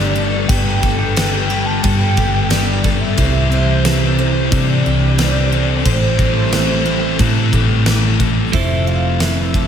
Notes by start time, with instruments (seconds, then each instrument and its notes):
Already playing: picked electric bass G1, distorted electric guitar G2 D3 G3, string machine G3 B3 A4, clean electric guitar G3 A3 D4 G4 B4, twelve-string acoustic guitar G4, soft synth lead D5
0.14 distorted electric guitar D3 G3, twelve-string acoustic guitar A4
0.48 picked electric bass G1, distorted electric guitar G2 D3 G3, twelve-string acoustic guitar B4, soft synth lead G5, kick, crash
0.82 distorted electric guitar D3 G3, twelve-string acoustic guitar A4, kick
0.98 soft synth lead G5
1.16 distorted electric guitar G2 D3 G3, twelve-string acoustic guitar G4, soft synth lead G5, snare, crash
1.50 distorted electric guitar D3 G3, twelve-string acoustic guitar B4
1.66 soft synth lead A5
1.83 distorted electric guitar G2 D3 G3, picked electric bass G2, twelve-string acoustic guitar A4, soft synth lead G5, kick, crash
2.16 picked electric bass G1, distorted electric guitar D3 G3, twelve-string acoustic guitar G4, kick
2.50 distorted electric guitar G2 D3 G3, twelve-string acoustic guitar G4, soft synth lead D5, snare, crash
2.83 distorted electric guitar D3 G3, twelve-string acoustic guitar A4, kick
3.01 soft synth lead E5
3.17 picked electric bass C2, distorted electric guitar C3 G3 C4, clean electric guitar C3 E3 G3 C4 E4 C5, string machine E3 C4 G4, twelve-string acoustic guitar C5, soft synth lead E5, kick, crash
3.50 distorted electric guitar G3 C4, twelve-string acoustic guitar C5
3.84 distorted electric guitar C3 G3 C4, twelve-string acoustic guitar A4, snare, crash
4.18 distorted electric guitar G3 C4, twelve-string acoustic guitar C5
4.50 distorted electric guitar C3 G3 C4, picked electric bass C3, twelve-string acoustic guitar A4, soft synth lead D5, kick, crash
4.84 picked electric bass C2, distorted electric guitar G3 C4, twelve-string acoustic guitar G4
5.18 distorted electric guitar C3 G3 C4, twelve-string acoustic guitar G4, snare, crash
5.51 distorted electric guitar G3 C4, twelve-string acoustic guitar A4
5.84 picked electric bass A1, distorted electric guitar A2 E3 A3, clean electric guitar E3 G3 C4 E4 C5, string machine G3 A4, soft synth lead C5, twelve-string acoustic guitar C5, kick, crash
6.18 distorted electric guitar E3 A3, twelve-string acoustic guitar C5, kick
6.51 distorted electric guitar A2 E3 A3, twelve-string acoustic guitar A4, snare, crash
6.85 distorted electric guitar E3 A3, twelve-string acoustic guitar C5
7.18 distorted electric guitar A2 E3 A3, picked electric bass A2, twelve-string acoustic guitar A4, kick, crash
7.52 picked electric bass A1, distorted electric guitar E3 A3, twelve-string acoustic guitar G4, kick
7.85 distorted electric guitar A2 E3 A3, twelve-string acoustic guitar G4, snare, crash
8.19 distorted electric guitar E3 A3, twelve-string acoustic guitar A4, kick
8.52 picked electric bass F1, distorted electric guitar F2 C3 F3, clean electric guitar F3 A3 C4 E4 A4, twelve-string acoustic guitar C5, soft synth lead E5, kick, open hi-hat
8.87 twelve-string acoustic guitar A4, soft synth lead F5
9.20 twelve-string acoustic guitar C5, soft synth lead E5, snare, open hi-hat
9.54 distorted electric guitar F2 C3 F3, twelve-string acoustic guitar A4, kick